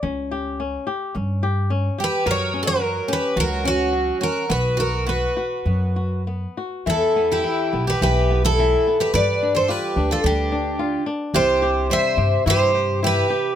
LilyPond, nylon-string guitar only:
\new Staff \with { instrumentName = "Nylon-string guitar" } { \time 4/4 \key fis \phrygian \tempo 4 = 107 cis'8 g'8 cis'8 g'8 cis'8 g'8 cis'8 g'8 | fis8 cis'8 fis8 cis'8 fis8 cis'8 fis8 cis'8 | b8 fis'8 b8 fis'8 b8 fis'8 b8 fis'8 | \key e \minor e8 b8 e8 b8 e8 b8 e8 b8 |
g8 d'8 f'8 d'8 g8 d'8 f'8 d'8 | c8 g'8 g8 g'8 e'8 g'8 e'8 g'8 | }